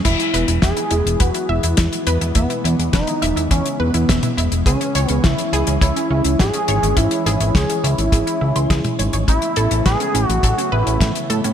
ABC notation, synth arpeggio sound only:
X:1
M:4/4
L:1/16
Q:1/4=104
K:E
V:1 name="Synth arpeggio sound"
E z B E e E E z B E e E E z B E | e E E z B E e E E z B E e E E z | G C c C C z G C c C C z G C c C | C z G C c C C z G C E =c' G z ^c c |
C z A C B C C z A C B C C z A C |]